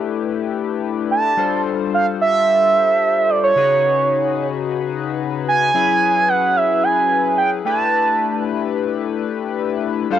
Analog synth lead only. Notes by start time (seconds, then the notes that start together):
1.11 A5
1.94 F5
2.21 E5
3.30 D5
3.44 C#5
5.48 G#5
6.29 F#5
6.56 E5
6.83 G#5
7.38 G5
7.66 A5
10.12 F5